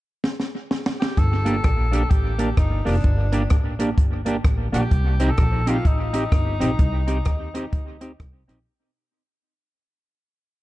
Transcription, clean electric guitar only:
1.46 1.54 A#3 medium
1.46 1.55 D4 medium
1.46 1.55 G4 medium
1.93 2.01 A#3 medium
1.93 2.02 D4 medium
1.93 2.02 G4 medium
2.39 2.48 A#3 medium
2.39 2.48 D4 medium
2.39 2.48 G4 medium
2.85 2.94 A#3 medium
2.85 2.95 D4 medium
2.85 2.95 G4 medium
3.32 3.41 A#3 medium
3.32 3.42 D4 medium
3.32 3.42 G4 loud
3.79 3.88 A#3 medium
3.79 3.88 D4 medium
3.79 3.89 G4 medium
4.26 4.35 A#3 medium
4.26 4.35 D4 medium
4.26 4.36 G4 medium
4.73 4.82 A#3 medium
4.73 4.82 D4 medium
4.73 4.82 G4 medium
5.20 5.29 C4 medium
5.20 5.29 D#4 medium
5.20 5.29 G4 loud
5.66 5.75 C4 medium
5.66 5.76 D#4 medium
5.66 5.76 G4 medium
6.13 6.22 C4 medium
6.13 6.23 D#4 medium
6.13 6.23 G4 medium
6.60 6.69 C4 medium
6.60 6.70 D#4 medium
6.60 6.70 G4 medium
7.07 7.16 C4 medium
7.07 7.17 D#4 medium
7.07 7.17 G4 medium
7.54 7.63 C4 medium
7.54 7.64 D#4 medium
7.54 7.64 G4 medium
8.01 8.10 C4 medium
8.01 8.11 D#4 medium
8.01 8.11 G4 medium
8.48 8.57 C4 medium
8.48 8.58 D#4 medium
8.48 8.58 G4 medium

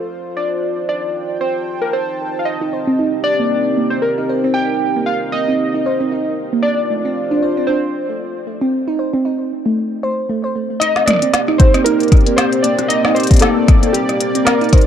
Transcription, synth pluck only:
2.61 2.72 D#4 loud
2.73 2.87 C5 medium
2.87 2.95 C4 loud
2.99 3.09 D#4 loud
3.40 3.44 A#3 medium
3.77 3.91 A#3 medium
3.92 3.97 C4 loud
4.18 4.29 D#4 medium
4.29 4.43 C5 medium
4.44 4.52 C4 loud
4.55 4.66 D#4 medium
4.96 5.01 A#3 medium
5.34 5.48 A#3 medium
5.48 5.53 C4 loud
5.74 5.85 D#4 medium
5.86 6.00 C5 medium
6.01 6.08 C4 loud
6.12 6.22 D#4 medium
6.53 6.58 A#3 medium
6.90 7.04 A3 medium
7.05 7.10 C4 loud
7.31 7.42 D4 loud
7.43 7.56 C5 medium
7.57 7.65 C4 loud
7.69 7.79 D4 loud
8.09 8.14 A3 medium
8.47 8.61 A3 medium
8.61 8.66 C4 loud
8.88 8.98 D#4 loud
8.99 9.13 C5 medium
9.14 9.21 C4 loud
9.25 9.35 D#4 loud
9.66 9.70 A3 medium
10.03 10.17 C5 loud
10.29 10.40 A3 medium
10.44 10.52 C5 medium
10.56 10.62 A3 medium
10.70 10.78 A3 medium
11.08 11.21 A#3 medium
11.22 11.27 C4 loud
11.48 11.59 D#4 loud
11.60 11.74 C5 medium
11.74 11.82 C4 loud
11.86 11.96 D#4 loud
12.27 12.31 A#3 medium
12.64 12.78 A#3 medium
12.79 12.83 C4 loud
13.05 13.16 D#4 loud
13.16 13.30 C5 medium
13.31 13.39 C4 loud
13.42 13.52 D#4 loud
13.83 13.88 A#3 medium
14.21 14.34 A#3 medium
14.35 14.40 C4 loud
14.61 14.72 D#4 loud
14.73 14.87 C5 medium

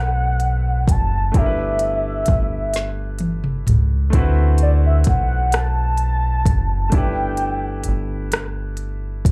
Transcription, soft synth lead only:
0.00 0.92 F#5 loud
0.91 1.38 A5 loud
1.36 3.68 E5 loud
4.62 4.72 D5 medium
4.86 4.96 E5 medium
5.09 5.56 F#5 medium
5.55 6.88 A5 loud
6.88 6.97 A5 medium
6.95 8.33 G5 loud

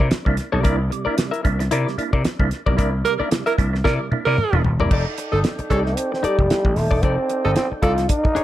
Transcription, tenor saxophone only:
3.05 3.14 A#4 loud
3.46 3.54 A#4 medium
3.84 3.94 A#4 loud
4.25 4.62 A#4 loud
5.32 5.40 A4 medium
5.70 5.80 A4 medium
7.45 7.52 A4 medium
7.83 7.92 A4 loud

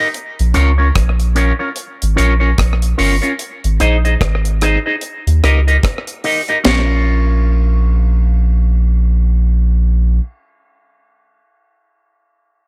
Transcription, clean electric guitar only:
0.54 0.71 C#4 medium
0.54 0.71 F4 medium
0.54 0.71 A#4 loud
0.54 0.71 C#5 loud
0.78 0.88 C#4 medium
0.78 0.88 F4 soft
0.78 0.87 A#4 medium
0.78 0.87 C#5 medium
1.35 1.52 C#4 medium
1.35 1.52 F4 medium
1.35 1.52 A#4 medium
1.35 1.53 C#5 medium
1.59 1.69 C#4 soft
1.59 1.69 F4 soft
1.59 1.69 A#4 medium
1.59 1.69 C#5 medium
2.16 2.33 C#4 medium
2.16 2.33 F4 medium
2.16 2.33 A#4 medium
2.16 2.34 C#5 loud
2.40 2.50 C#4 soft
2.40 2.50 F4 medium
2.40 2.50 A#4 medium
2.40 2.50 C#5 medium
2.98 3.14 C#4 medium
2.98 3.15 F4 medium
2.98 3.15 A#4 loud
2.98 3.15 C#5 medium
3.22 3.32 C#4 medium
3.22 3.31 F4 medium
3.22 3.31 A#4 medium
3.22 3.31 C#5 medium
3.80 3.96 D#4 medium
3.80 3.96 G#4 medium
3.80 3.97 C5 medium
3.80 3.97 D#5 loud
4.05 4.14 D#4 soft
4.05 4.14 G#4 medium
4.05 4.13 C5 medium
4.05 4.13 D#5 medium
4.62 4.78 D#4 medium
4.62 4.78 G#4 medium
4.62 4.78 C5 medium
4.62 4.78 D#5 medium
4.86 4.95 D#4 soft
4.86 4.95 G#4 medium
4.86 4.94 C5 medium
4.86 4.94 D#5 medium
5.43 5.59 D#4 medium
5.43 5.59 G4 medium
5.43 5.59 A#4 medium
5.43 5.60 D#5 medium
5.68 5.76 D#4 soft
5.68 5.76 G4 medium
5.68 5.76 A#4 medium
5.68 5.76 D#5 medium
6.24 6.40 D#4 medium
6.24 6.40 G4 medium
6.24 6.41 A#4 medium
6.24 6.41 D#5 medium
6.49 6.58 D#4 medium
6.49 6.58 G4 medium
6.49 6.57 A#4 medium
6.49 6.57 D#5 medium
6.64 10.22 C#4 medium
6.64 10.24 F4 medium
6.64 10.26 A#4 medium
6.69 10.27 C#5 medium

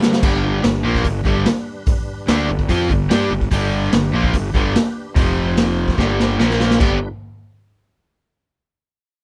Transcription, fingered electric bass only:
0.23 0.61 G1 medium
0.64 0.83 G1 medium
0.84 1.04 A#1 medium
1.05 1.24 G1 medium
1.25 1.45 G1 medium
2.28 2.48 D2 loud
2.49 2.68 G1 medium
2.69 2.88 F2 medium
2.90 3.09 G1 medium
3.10 3.29 G2 medium
3.31 3.50 G1 medium
3.52 3.90 G1 medium
3.93 4.12 G1 medium
4.13 4.32 A#1 loud
4.34 4.53 G1 medium
4.54 4.73 G1 medium
5.16 5.94 F1 medium
5.98 6.36 G1 loud
6.40 6.78 A#1 medium
6.81 7.00 G1 loud

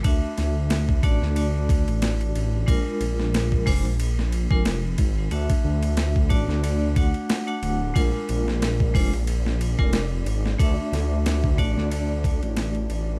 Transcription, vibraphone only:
0.03 0.99 A3 medium
0.03 1.00 D4 medium
0.03 1.00 F#4 medium
0.03 1.01 E5 medium
1.03 1.33 A3 medium
1.03 1.33 D4 medium
1.03 1.33 F#4 medium
1.03 1.34 D5 medium
1.36 2.64 A3 medium
1.36 2.65 D4 medium
1.36 2.65 F#4 medium
1.36 2.65 D5 medium
2.66 3.63 G#3 medium
2.66 3.63 D4 medium
2.66 3.63 F4 medium
2.66 3.64 A#4 medium
3.66 3.80 G#3 medium
3.66 3.80 D4 medium
3.66 3.80 F4 medium
3.66 3.81 C5 loud
4.50 4.69 G#3 medium
4.50 4.69 D4 medium
4.50 4.69 F4 medium
4.50 4.69 A#4 medium
5.31 6.27 A3 medium
5.31 6.27 D4 medium
5.31 6.28 F#4 medium
5.31 6.28 E5 medium
6.29 6.60 A3 medium
6.29 6.60 D4 medium
6.29 6.60 F#4 medium
6.29 6.60 D5 medium
6.63 6.93 A3 medium
6.63 6.94 D4 medium
6.63 6.94 F#4 medium
6.63 6.94 D5 medium
6.96 7.43 A3 medium
6.96 7.44 D4 medium
6.96 7.44 F#4 medium
6.96 7.44 F#5 medium
7.47 7.92 A3 medium
7.47 7.92 D4 medium
7.47 7.92 F#4 medium
7.47 7.92 F#5 loud
7.94 8.90 G#3 medium
7.94 8.91 D4 medium
7.94 8.91 F4 medium
7.94 8.91 A#4 medium
8.94 9.08 G#3 medium
8.94 9.08 D4 medium
8.94 9.08 F4 medium
8.94 9.09 C5 loud
9.79 9.97 G#3 medium
9.79 9.97 D4 medium
9.79 9.97 F4 medium
9.79 9.97 A#4 medium
10.59 11.54 A3 medium
10.59 11.55 D4 medium
10.59 11.55 F#4 medium
10.59 11.56 E5 medium
11.58 11.88 A3 medium
11.58 11.88 D4 medium
11.58 11.88 F#4 medium
11.58 11.88 D5 loud
11.90 13.19 A3 medium
11.90 13.19 D4 medium
11.90 13.19 F#4 medium
11.90 13.19 D5 medium

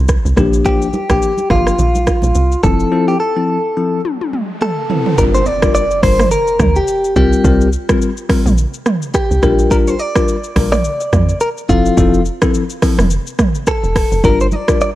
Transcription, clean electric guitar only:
0.66 1.10 G4 medium
1.11 1.50 G4 medium
1.51 2.63 F4 medium
2.63 3.05 A4 loud
3.08 3.20 G4 medium
3.20 4.01 A4 medium
4.62 5.18 A4 medium
5.18 5.23 A#4 loud
5.35 5.46 C5 loud
5.46 5.73 D5 loud
5.75 6.03 D5 loud
6.03 6.31 C5 loud
6.31 6.78 A#4 loud
6.76 7.15 G4 medium
7.16 7.69 G4 medium
9.15 9.73 G4 loud
9.71 9.76 A#4 loud
9.88 9.99 C5 loud
9.99 10.71 D5 loud
10.72 11.41 D5 loud
11.41 11.49 A#4 loud
11.69 12.22 F4 medium
13.68 14.25 A4 loud
14.25 14.41 A#4 loud
14.41 14.46 C5 loud
14.53 14.80 D5 loud
14.82 14.89 D5 loud

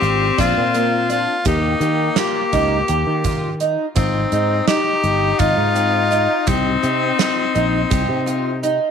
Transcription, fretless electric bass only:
0.02 0.29 G#1 medium
0.38 0.52 A#1 medium
0.57 1.25 A#2 medium
1.46 1.73 D#2 medium
1.80 2.08 D#3 medium
2.53 2.81 C#2 medium
2.89 3.03 D#2 medium
3.07 3.75 D#3 medium
3.96 4.24 G#1 medium
4.32 4.60 G#2 loud
5.03 5.31 G1 medium
5.40 5.53 G#1 medium
5.57 6.26 G#2 medium
6.48 6.75 C2 medium
6.83 7.11 C3 medium
7.55 7.83 A#1 medium
7.91 8.05 C2 medium
8.09 8.78 C3 medium

